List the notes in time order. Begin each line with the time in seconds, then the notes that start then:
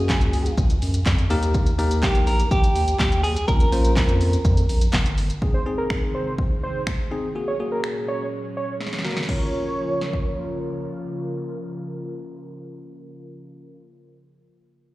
Already playing: F#2 A#3 C#4 F#4 G#4
0.09 kick, snare, clap, shaker
0.21 C#2, closed hi-hat, shaker
0.33 open hi-hat, shaker
0.46 closed hi-hat, shaker
0.58 C#2, kick, shaker
0.70 closed hi-hat, shaker
0.82 F#2, open hi-hat, shaker
0.94 closed hi-hat, shaker
1.06 F2, kick, snare, clap, shaker
1.19 closed hi-hat, shaker
1.30 D#2 A#3 D#4 G4 A#4, open hi-hat, shaker
1.43 closed hi-hat, shaker
1.54 kick, shaker
1.67 closed hi-hat, shaker
1.79 D#2 A#3 D#4 G4 A#4, open hi-hat, shaker
1.91 closed hi-hat, shaker
2.03 G4, kick, snare, clap, shaker
2.15 A#1, closed hi-hat, shaker
2.27 A#4, open hi-hat, shaker
2.40 closed hi-hat, shaker
2.51 A#1 G4, kick, shaker
2.64 closed hi-hat, shaker
2.75 D#2, open hi-hat, shaker
2.88 closed hi-hat, shaker
2.99 D#2 G4, kick, snare, clap, shaker
3.12 closed hi-hat, shaker
3.23 G#4, open hi-hat, shaker
3.37 closed hi-hat, shaker
3.48 A#1 A#3 C#4 F4 A#4, kick, shaker
3.60 closed hi-hat, shaker
3.72 A#1 A#3 C#4 F4 C5, open hi-hat, shaker
3.85 closed hi-hat, shaker
3.97 kick, snare, clap, shaker
4.09 F2, closed hi-hat, shaker
4.21 open hi-hat, shaker
4.33 closed hi-hat, shaker
4.45 F2, kick, shaker
4.57 closed hi-hat, shaker
4.69 A#1, open hi-hat, shaker
4.81 closed hi-hat, shaker
4.93 G1, kick, snare, clap, shaker
5.06 closed hi-hat, shaker
5.18 open hi-hat, shaker
5.30 closed hi-hat, shaker
5.42 C3 D#3 G#3 C4 D#4 G#4, kick
5.54 C5
5.66 C4 D#4 G#4
5.78 A#4
5.90 finger snap, kick
6.15 C5
6.38 kick
6.63 C5
6.87 finger snap, kick
7.11 C4 D#4 G#4
7.35 A#2 F#3 G#3 A#3 C#4 F#4 G#4
7.48 C#5
7.60 A#3 F#4 G#4
7.72 A#4
7.84 finger snap
8.08 C#5
8.57 C#5
8.80 snare
8.86 snare
8.93 snare
8.99 snare
9.05 A#3 F#4 A#4, snare
9.11 snare
9.17 snare
9.23 snare
9.27 C#3 F3 A#3 C#4 F4 A#4 C#5, kick, crash
9.31 A#4
10.01 snare
10.13 kick